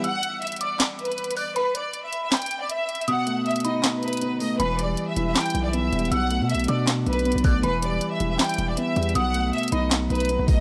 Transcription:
<<
  \new Staff \with { instrumentName = "Synth bell" } { \time 4/4 \key e \minor \tempo 4 = 158 e'''4. d'''8 r4. fis'''8 | b''1 | dis'''4. b''8 r2 | b''1 |
e'''4. d'''8 r4. fis'''8 | b''1 | dis'''4. b''8 r2 | }
  \new Staff \with { instrumentName = "Violin section" } { \time 4/4 \key e \minor fis''4 e''8 d''8 r8 b'4 d''8 | b'8 d''8. e''8 e''16 g''8. d''16 e''4 | fis''4 e''8 dis''8 r8 b'4 dis''8 | b'8 d''8. e''8 e''16 g''8. d''16 e''4 |
fis''4 e''8 d''8 r8 b'4 d''8 | b'8 d''8. e''8 e''16 g''8. d''16 e''4 | fis''4 e''8 dis''8 r8 b'4 dis''8 | }
  \new Staff \with { instrumentName = "Grand piano" } { \time 4/4 \key e \minor r1 | r1 | b,8 a4 dis'4. b8 a8 | e8 g4 e'4. b8 g8 |
b,8 a4 d'4. b8 a8 | e8 g4 e'4. b8 g8 | b,8 a4 dis'4. b8 a8 | }
  \new Staff \with { instrumentName = "808-style bass" } { \clef bass \time 4/4 \key e \minor r1 | r1 | r1 | e,,4 r8 e,,8 r8 b,,4 e,,8 |
b,,8. b,16. b,,16. b,4 b,,8. b,,8. | e,,4 r8 e,,8 r8 e,,8 r8 e,8 | b,,4 r8 b,,4 b,,8. b,,8 r16 | }
  \new DrumStaff \with { instrumentName = "Drums" } \drummode { \time 4/4 hh8 hh8 hh32 hh32 hh32 hh32 hh8 \tuplet 3/2 { <hc hh sn>16 r16 r16 hh16 hh16 hh16 hh16 hh16 hh16 hho16 r16 r16 } | hh8 hh8 hh8 hh8 <hc hh sn>32 hh32 hh32 hh32 hh8 \tuplet 3/2 { hh16 r16 r16 hh16 hh16 hh16 } | hh8 hh8 hh32 hh32 hh32 hh32 hh8 <hc hh sn>8 hh32 hh32 hh32 hh32 hh8 hho8 | hh8 hh8 hh8 hh8 <hc hh sn>32 hh32 hh32 hh32 hh8 \tuplet 3/2 { hh16 r16 r16 hh16 hh16 hh16 } |
hh8 hh8 hh32 hh32 hh32 hh32 hh8 \tuplet 3/2 { <hc hh sn>16 r16 r16 hh16 hh16 hh16 hh16 hh16 hh16 <hho bd>16 r16 r16 } | hh8 hh8 hh8 hh8 <hc hh sn>32 hh32 hh32 hh32 hh8 \tuplet 3/2 { hh16 r16 r16 hh16 hh16 hh16 } | hh8 hh8 hh32 hh32 hh32 hh32 hh8 <hc hh sn>8 hh32 hh32 hh32 hh32 hh8 <hho bd>8 | }
>>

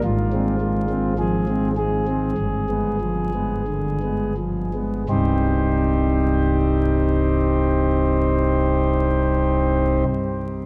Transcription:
<<
  \new Staff \with { instrumentName = "Pipe organ" } { \time 4/4 \key c \minor \tempo 4 = 43 f'4 aes'8 aes'2 r8 | <c, g, g c' ees' g' c''>1 | }
  \new Staff \with { instrumentName = "Pipe organ" } { \clef bass \time 4/4 \key c \minor << { aes,16 <aes c'>16 aes16 <aes c'>16 f16 <aes c'>16 aes16 <aes c'>16 g,16 <aes b>16 f16 <aes b>16 d16 <aes b>16 f16 <aes b>16 | r1 | } \\ { aes,,2 g,,2 | c,,1 | } >> }
>>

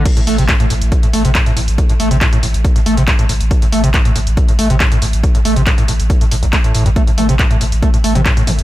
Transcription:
<<
  \new Staff \with { instrumentName = "Acid bass" } { \clef bass \time 4/4 \key a \minor \tempo 4 = 139 r16 a,16 a16 c16 a,16 a,16 a,16 r8 a,16 a16 c16 a,16 a,16 a,16 r16 | r16 a,16 a16 c16 a,16 a,16 a,16 r8 a,16 a16 c16 a,16 a,16 a,16 r16 | r16 a,16 a16 c16 a,16 a,16 a,16 r8 a,16 a16 c16 a,16 a,16 a,16 r16 | r16 a,16 a16 c16 a,16 a,16 a,16 r8 a,16 a,16 a,,16 a16 a,16 a,16 g,16 |
a16 a,16 a16 c16 a,16 a,16 a,16 r16 a16 a,16 a16 c16 a,16 a,16 a,16 r16 | }
  \new Staff \with { instrumentName = "Sub bass" } { \clef bass \time 4/4 \key a \minor r8 a,,16 a,,16 r8 a,,16 a,,16 r8 a,,16 a,,16 r8 a,,16 a,,16 | r8 a,,16 a,,16 r8 a,,16 a,,16 r8 a,,16 a,,16 r8 a,,16 a,,16 | r8 a,,16 a,,16 r8 a,,16 a,,16 r8 a,,16 a,,16 r8 a,,16 a,,16 | r8 a,,16 a,,16 r8 a,,16 a,,16 r8 a,,16 a,,16 r8 a,,16 a,,16 |
r8 a,,16 a,,16 r8 a,,16 a,,16 r8 a,,16 a,,16 r8 a,,16 a,,16 | }
  \new DrumStaff \with { instrumentName = "Drums" } \drummode { \time 4/4 <cymc hh bd>16 hh16 hho16 hh16 <hc hh bd>16 hh16 hho16 hh16 <hh bd>16 hh16 hho16 hh16 <hc hh bd>16 hh16 hho16 hh16 | <hh bd>16 hh16 hho16 hh16 <hc hh bd>16 hh16 hho16 hh16 <hh bd>16 hh16 hho16 hh16 <hc hh bd>16 hh16 hho16 hh16 | <hh bd>16 hh16 hho16 hh16 <hc hh bd>16 hh16 hho16 hh16 <hh bd>16 hh16 hho16 hh16 <hc hh bd>16 hh16 hho16 hh16 | <hh bd>16 hh16 hho16 hh16 <hc hh bd>16 hh16 hho16 hh16 <hh bd>16 hh16 hho16 hh16 <hc hh bd>16 hh16 hho16 hh16 |
<hh bd>16 hh16 <hho toml>16 hh16 <hc hh bd>16 hh16 hho16 hh16 <hh bd>16 hh16 hho16 <hh toml>16 <hc hh bd>16 hh16 <hho toml>16 hh16 | }
>>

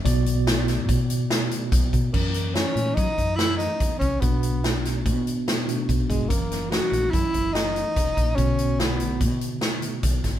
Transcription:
<<
  \new Staff \with { instrumentName = "Tenor saxophone" } { \time 5/4 \key fis \mixolydian \tempo 4 = 144 r1 r4 | ais4 cis'4 dis'4 e'8 dis'4 cis'8 | b4. r2. gis8 | ais4 fis'4 e'4 dis'2 |
cis'4 b4 r2. | }
  \new Staff \with { instrumentName = "Tine electric piano" } { \time 5/4 \key fis \mixolydian <b, b fis' d''>1~ <b, b fis' d''>4 | <e fis cis' ais'>1~ <e fis cis' ais'>4 | <b, b d' fis'>2.~ <b, b d' fis'>8 <b, b d' fis'>4. | <e fis cis' ais'>1~ <e fis cis' ais'>4 |
<b, d b fis'>1~ <b, d b fis'>4 | }
  \new Staff \with { instrumentName = "Fretless electric bass" } { \clef bass \time 5/4 \key fis \mixolydian b,,2 b,2 b,,8 b,8 | fis,4. ais,8 fis16 r16 fis,4. e,8 bis,,8 | b,,2 b,2 b,,8 g,,8 | fis,,4. ais,,8 fis,16 r16 fis,,4. e,,8 ais,,8 |
b,,2 b,2 b,,8 gis,,8 | }
  \new DrumStaff \with { instrumentName = "Drums" } \drummode { \time 5/4 <hh bd>8 hh8 <hh sn>8 <hh sn>8 <hh bd>8 hh8 <hh sn>8 hh8 <hh bd>8 <hh bd>8 | <cymc bd>8 hh8 <hh sn>8 hh8 <hh bd>8 <hh bd>8 <hh sn>8 hh8 <hh bd>8 <hh bd>8 | <hh bd>8 hh8 <hh sn>8 <hh sn>8 <hh bd>8 hh8 <hh sn>8 hh8 <hh bd>8 <hh bd>8 | <hh bd>8 <hh sn>8 <hh sn>8 hh8 <hh bd>8 <hh bd>8 <hh sn>8 hh8 <hh bd>8 <hh bd>8 |
<hh bd>8 hh8 <hh sn>8 hh8 <hh bd>8 hh8 <hh sn>8 hh8 <hh bd>8 <hh bd sn>8 | }
>>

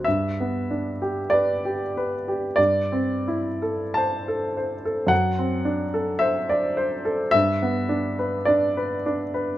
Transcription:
\new Staff \with { instrumentName = "Grand piano" } { \time 4/4 \key g \major \tempo 4 = 52 << { e''4 d''4 d''4 a''4 | fis''4 e''4 e''4 d''8 r8 | } \\ { g,16 b16 d'16 g'16 b'16 g'16 b'16 g'16 g,16 c'16 e'16 a'16 c''16 a'16 c''16 a'16 | fis,16 c'16 d'16 a'16 c''16 d''16 c''16 a'16 g,16 b16 d'16 b'16 d'16 b'16 d'16 b'16 | } >> }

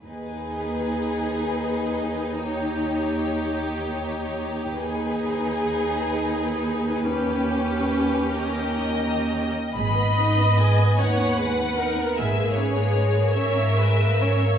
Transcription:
<<
  \new Staff \with { instrumentName = "Violin section" } { \time 6/8 \key gis \minor \tempo 4. = 50 << { r2. | r2. | r2. | r4. dis''4. |
b''4 gis''8 fis''4. | e''8 cis''4 e''4. | } \\ { b'2. | cis''2. | b'2.~ | b'4. ais'4~ ais'16 r16 |
r2. | r2. | } >> }
  \new Staff \with { instrumentName = "Viola section" } { \time 6/8 \key gis \minor dis'2.~ | dis'2. | dis'2. | cis'2~ cis'8. r16 |
dis''4. cis''8 b'8 ais'8 | gis'4. cis''8 b'8 cis''8 | }
  \new Staff \with { instrumentName = "Violin section" } { \time 6/8 \key gis \minor << { gis'2. | g'2. | gis'2. | g'2~ g'8. r16 |
b'2.~ | b'4. ais'4. | } \\ { r2. | r2. | r2. | r2. |
gis16 b16 dis'16 b16 gis16 b16 dis'16 b16 gis16 b16 dis'16 b16 | gis16 ais16 cis'16 ais16 gis16 ais16 cis'16 ais16 gis16 ais16 cis'16 ais16 | } >> }
  \new Staff \with { instrumentName = "Cello section" } { \clef bass \time 6/8 \key gis \minor dis,2.~ | dis,2. | dis,2.~ | dis,2~ dis,8. r16 |
gis,4. dis,4. | gis,4. gis,4. | }
  \new Staff \with { instrumentName = "Double bass section" } { \clef bass \time 6/8 \key gis \minor r2. | r2. | r2. | r2. |
gis,,4 r2 | gis,,4 r2 | }
>>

